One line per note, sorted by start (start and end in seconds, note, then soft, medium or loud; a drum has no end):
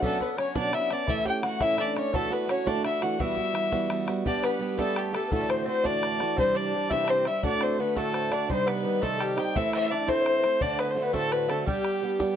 0.02 0.20 B2 medium
0.02 0.20 F#3 medium
0.02 0.19 A3 medium
0.02 0.20 B3 medium
0.02 0.20 C#4 medium
0.02 0.18 D4 medium
0.02 0.39 A4 medium
0.02 0.20 A4 loud
0.02 bodhran medium
0.20 0.36 B3 medium
0.20 0.37 B3 soft
0.20 0.29 B4 medium
0.20 bodhran soft
0.37 0.55 F#3 medium
0.37 0.55 B3 medium
0.37 0.54 C#4 medium
0.37 0.55 C#4 medium
0.37 0.54 D4 medium
0.37 0.57 C#5 loud
0.37 0.55 C#5 medium
0.37 bodhran medium
0.55 0.74 B2 medium
0.55 0.71 F#3 medium
0.55 0.72 B3 medium
0.55 0.73 C#4 medium
0.55 0.73 D4 medium
0.55 0.72 D5 medium
0.55 0.76 D5 loud
0.55 bodhran loud
0.72 0.90 F#3 medium
0.72 0.91 B3 medium
0.72 0.91 C#4 medium
0.72 0.89 D4 medium
0.72 0.90 E4 medium
0.72 0.91 E5 medium
0.72 0.94 E5 loud
0.72 bodhran medium
0.89 1.09 B3 medium
0.89 1.08 C#4 medium
0.89 1.06 D4 medium
0.89 1.08 D4 medium
0.89 1.09 D5 medium
0.89 1.11 D5 loud
0.89 bodhran medium
1.07 1.26 A2 medium
1.07 1.26 E3 medium
1.07 1.26 A3 medium
1.07 1.26 C#4 medium
1.07 1.25 E4 medium
1.07 1.24 E4 loud
1.07 1.24 E5 loud
1.07 1.26 E5 loud
1.07 bodhran medium
1.25 1.43 A3 soft
1.25 1.44 C#4 soft
1.25 1.43 E4 soft
1.25 1.42 G4 medium
1.25 1.44 G5 loud
1.25 1.43 G5 loud
1.25 bodhran soft
1.43 1.61 E3 medium
1.43 1.61 A3 medium
1.43 1.60 C#4 medium
1.43 1.60 E4 medium
1.43 1.60 F#4 medium
1.43 1.60 F#5 loud
1.43 1.64 F#5 loud
1.43 bodhran medium
1.60 1.80 A2 medium
1.60 1.76 E3 medium
1.60 1.77 A3 medium
1.60 1.78 C#4 medium
1.60 1.79 E4 medium
1.60 1.77 E4 medium
1.60 1.79 E5 medium
1.60 1.81 E5 loud
1.60 bodhran medium
1.78 1.96 E3 medium
1.78 1.96 A3 medium
1.78 1.95 C#4 medium
1.78 1.96 D4 medium
1.78 1.94 E4 medium
1.78 2.15 D5 loud
1.78 1.96 D5 loud
1.78 bodhran medium
1.95 2.13 A3 medium
1.95 2.13 C#4 medium
1.95 2.14 C#4 medium
1.95 2.13 E4 medium
1.95 2.16 C#5 medium
1.95 bodhran medium
2.13 2.31 D2 medium
2.13 2.31 A2 medium
2.13 2.32 E3 medium
2.13 2.30 A3 medium
2.13 2.31 A3 medium
2.13 2.30 D4 medium
2.13 2.29 F#4 loud
2.13 2.31 A4 loud
2.13 2.34 A4 loud
2.13 bodhran medium
2.31 2.46 E3 soft
2.31 2.48 A3 soft
2.31 2.48 B3 medium
2.31 2.48 D4 medium
2.31 2.49 F#4 medium
2.31 2.52 B4 medium
2.47 2.66 E3 medium
2.47 2.66 A3 medium
2.47 2.66 C#4 medium
2.47 2.65 D4 medium
2.47 2.65 F#4 medium
2.47 2.68 C#5 medium
2.47 2.69 C#5 loud
2.47 bodhran medium
2.66 2.85 D2 medium
2.66 2.85 A2 medium
2.66 2.82 E3 medium
2.66 2.83 A3 medium
2.66 2.84 D4 medium
2.66 2.83 D4 medium
2.66 2.84 F#4 medium
2.66 2.86 D5 medium
2.66 2.84 D5 loud
2.66 bodhran medium
2.83 3.02 E3 medium
2.83 3.02 A3 medium
2.83 3.01 D4 medium
2.83 3.01 E4 medium
2.83 3.00 F#4 medium
2.83 3.04 E5 medium
2.83 3.04 E5 loud
2.83 bodhran medium
3.01 3.18 E3 medium
3.01 3.19 A3 medium
3.01 3.20 D4 medium
3.01 3.19 F#4 medium
3.01 3.22 F#5 medium
3.01 bodhran medium
3.19 3.37 E3 medium
3.19 3.37 G3 medium
3.19 3.37 B3 loud
3.19 4.04 E4 medium
3.19 3.35 F#4 medium
3.19 4.02 E5 medium
3.19 4.08 E5 loud
3.19 bodhran medium
3.36 3.54 G3 soft
3.36 3.54 B3 soft
3.36 3.55 F#4 soft
3.36 bodhran soft
3.54 3.72 E3 medium
3.54 3.71 G3 medium
3.54 3.71 B3 medium
3.54 3.70 F#4 medium
3.54 bodhran medium
3.72 3.88 E3 medium
3.72 3.89 G3 medium
3.72 3.90 B3 medium
3.72 3.90 F#4 medium
3.72 bodhran medium
3.90 4.08 E3 medium
3.90 4.08 G3 medium
3.90 4.08 B3 medium
3.90 4.06 F#4 medium
3.90 bodhran medium
4.07 4.23 G3 medium
4.07 4.24 B3 medium
4.07 4.25 F#4 medium
4.07 bodhran medium
4.24 4.58 G3 medium
4.24 4.60 B3 medium
4.24 4.42 D4 medium
4.24 4.61 D4 loud
4.24 4.61 G4 loud
4.24 4.44 D5 medium
4.24 4.46 D5 loud
4.24 bodhran medium
4.43 4.76 B3 medium
4.43 4.78 B4 medium
4.43 4.81 B4 loud
4.43 bodhran medium
4.59 4.78 G3 medium
4.59 4.78 B3 medium
4.59 4.77 D4 medium
4.59 4.76 G4 medium
4.78 5.15 G3 medium
4.78 5.11 A3 medium
4.78 5.14 B3 medium
4.78 5.14 D4 medium
4.78 5.12 G4 medium
4.78 4.98 A4 medium
4.78 4.99 A4 loud
4.78 bodhran medium
4.96 5.13 G4 medium
4.96 5.16 G4 medium
4.96 bodhran medium
5.13 5.30 A3 medium
5.13 5.32 B3 soft
5.13 5.31 D4 soft
5.13 5.31 G4 medium
5.13 5.26 A4 medium
5.13 5.32 A4 medium
5.13 bodhran medium
5.27 5.67 D2 medium
5.27 5.33 B4 medium
5.31 5.67 A2 medium
5.31 5.65 E3 medium
5.31 5.48 A3 medium
5.31 5.66 A3 medium
5.31 5.67 D4 medium
5.31 5.68 F#4 medium
5.31 5.43 A4 medium
5.31 5.52 A4 medium
5.31 bodhran loud
5.42 5.50 D5 medium
5.49 5.64 C4 medium
5.49 5.85 C5 medium
5.49 5.67 C5 medium
5.49 bodhran medium
5.66 5.84 E3 medium
5.66 5.84 A3 medium
5.66 5.83 C4 medium
5.66 5.84 D4 medium
5.66 5.83 F#4 medium
5.66 5.87 C5 loud
5.83 6.21 D2 medium
5.83 6.21 A2 medium
5.83 6.20 E3 medium
5.83 6.20 A3 medium
5.83 6.39 D4 medium
5.83 6.20 D4 medium
5.83 6.18 F#4 medium
5.83 6.38 D5 medium
5.83 6.38 D5 loud
5.83 bodhran medium
6.03 bodhran medium
6.20 6.37 E3 medium
6.20 6.38 A3 medium
6.20 6.38 D4 medium
6.20 6.37 F#4 medium
6.20 bodhran medium
6.37 6.73 C3 medium
6.37 6.72 E3 medium
6.37 6.73 G3 medium
6.37 6.53 C4 medium
6.37 6.73 C4 loud
6.37 6.74 G4 loud
6.37 6.48 C5 loud
6.37 6.58 C5 loud
6.37 bodhran medium
6.48 6.57 C5 medium
6.55 6.88 D4 medium
6.55 6.92 D5 loud
6.55 6.93 D5 loud
6.73 6.91 E3 medium
6.73 6.91 G3 medium
6.73 6.91 C4 medium
6.73 6.90 G4 medium
6.90 7.27 C3 medium
6.90 7.27 E3 medium
6.90 7.27 G3 medium
6.90 7.26 C4 medium
6.90 7.02 E4 medium
6.90 7.24 G4 medium
6.90 7.10 E5 medium
6.90 7.11 E5 loud
6.90 bodhran medium
7.04 7.08 D4 medium
7.04 bodhran medium
7.08 7.26 C4 medium
7.08 7.28 C5 medium
7.08 7.29 C5 loud
7.25 7.44 G3 soft
7.25 7.44 C4 medium
7.25 7.42 E4 medium
7.25 7.43 G4 medium
7.25 7.45 E5 medium
7.25 7.44 E5 medium
7.25 bodhran medium
7.43 7.79 D2 medium
7.43 7.79 A2 medium
7.43 7.77 D3 medium
7.43 7.78 A3 medium
7.43 7.60 D4 medium
7.43 7.79 D4 medium
7.43 7.80 F#4 medium
7.43 7.79 D5 loud
7.43 7.64 D5 loud
7.43 bodhran medium
7.61 7.77 C4 medium
7.61 7.81 C5 loud
7.61 bodhran medium
7.78 7.96 D3 medium
7.78 7.96 A3 medium
7.78 7.96 B3 medium
7.78 7.96 D4 medium
7.78 7.95 F#4 medium
7.78 7.97 B4 medium
7.78 7.99 B4 loud
7.96 8.33 D2 medium
7.96 8.33 A2 medium
7.96 8.32 D3 medium
7.96 8.33 A3 medium
7.96 8.32 A3 medium
7.96 8.31 D4 medium
7.96 8.30 F#4 medium
7.96 8.15 A4 medium
7.96 8.34 A4 loud
7.96 bodhran medium
8.14 8.33 C5 medium
8.14 bodhran medium
8.31 8.49 D3 soft
8.31 8.50 A3 medium
8.31 8.48 D4 medium
8.31 8.50 D4 medium
8.31 8.49 F#4 medium
8.31 8.48 D5 medium
8.31 8.50 D5 medium
8.31 bodhran medium
8.49 8.84 C3 medium
8.49 8.82 D#3 medium
8.49 8.83 G3 medium
8.49 8.66 C4 medium
8.49 8.85 C4 medium
8.49 8.85 D#4 medium
8.49 8.61 C5 loud
8.49 8.69 C5 loud
8.49 bodhran medium
8.61 8.69 C5 medium
8.67 9.00 B3 medium
8.67 9.03 B4 medium
8.67 9.05 B4 loud
8.67 bodhran medium
8.83 9.02 D#3 medium
8.83 9.01 G3 medium
8.83 9.01 C4 medium
8.83 9.00 D#4 medium
9.01 9.38 C3 medium
9.01 9.38 D#3 medium
9.01 9.38 G3 medium
9.01 9.18 A3 medium
9.01 9.38 C4 medium
9.01 9.36 D#4 medium
9.01 9.21 A4 medium
9.01 9.23 A4 loud
9.01 bodhran medium
9.19 9.36 G3 medium
9.19 9.39 G4 medium
9.19 9.40 G4 loud
9.19 bodhran medium
9.37 9.56 G3 soft
9.37 9.56 C4 medium
9.37 9.55 D#4 medium
9.37 9.54 G4 medium
9.37 9.54 G5 medium
9.37 9.58 G5 loud
9.37 bodhran medium
9.55 9.90 A2 medium
9.55 9.89 E3 medium
9.55 9.90 A3 medium
9.55 9.91 C4 loud
9.55 9.72 E4 medium
9.55 9.91 E4 medium
9.55 9.71 E5 medium
9.55 9.73 E5 loud
9.55 bodhran medium
9.73 9.90 E4 medium
9.73 10.09 E5 loud
9.73 9.92 E5 loud
9.73 bodhran medium
9.90 10.08 E3 medium
9.90 10.07 A3 medium
9.90 10.07 C4 medium
9.90 10.09 D4 medium
9.90 10.06 E4 medium
9.90 10.10 D5 loud
10.07 10.44 A2 medium
10.07 10.44 E3 medium
10.07 10.43 A3 medium
10.07 10.43 C4 medium
10.07 10.58 C4 medium
10.07 10.41 E4 medium
10.07 10.23 C5 medium
10.07 10.63 C5 loud
10.07 bodhran medium
10.21 10.41 C5 medium
10.21 10.27 D5 medium
10.26 bodhran medium
10.39 10.60 E4 medium
10.39 10.45 B4 medium
10.43 10.61 A3 soft
10.43 10.60 C4 medium
10.43 10.63 C5 medium
10.43 bodhran medium
10.60 10.96 D2 medium
10.60 10.96 A2 medium
10.60 10.95 D3 loud
10.60 10.96 A3 loud
10.60 10.95 C4 medium
10.60 10.78 D4 medium
10.60 10.97 F#4 loud
10.60 10.79 D5 loud
10.60 10.81 D5 loud
10.60 bodhran medium
10.79 10.90 B3 medium
10.79 10.92 B4 loud
10.79 bodhran medium
10.91 11.04 C5 medium
10.95 11.13 D3 medium
10.95 11.12 A3 medium
10.95 11.13 C4 medium
10.95 11.12 F#4 medium
11.02 11.13 B3 medium
11.02 11.15 B4 medium
11.02 11.14 B4 medium
11.13 11.50 D2 medium
11.13 11.49 A2 medium
11.13 11.51 D3 medium
11.13 11.47 A3 medium
11.13 11.48 A3 medium
11.13 11.49 C4 medium
11.13 11.47 F#4 medium
11.13 11.33 A4 medium
11.13 11.34 A4 loud
11.13 bodhran medium
11.32 11.51 B4 medium
11.32 11.51 B4 loud
11.32 bodhran medium
11.48 11.66 D3 medium
11.48 11.65 A3 medium
11.48 11.67 A3 medium
11.48 11.67 C4 medium
11.48 11.66 F#4 medium
11.48 11.66 A4 medium
11.48 11.67 A4 medium
11.48 bodhran medium
11.66 12.33 G3 medium
11.66 12.01 G3 medium
11.66 12.02 B3 medium
11.66 12.04 D4 medium
11.66 12.33 G4 medium
11.66 12.34 G4 loud
11.66 12.03 G4 medium
11.66 bodhran medium
11.84 bodhran medium
12.02 12.19 G3 medium
12.02 12.20 B3 medium
12.02 12.19 D4 medium
12.02 12.18 G4 medium
12.20 12.36 G3 medium
12.20 12.36 B3 medium
12.20 12.36 D4 medium
12.20 12.36 G4 medium
12.20 bodhran medium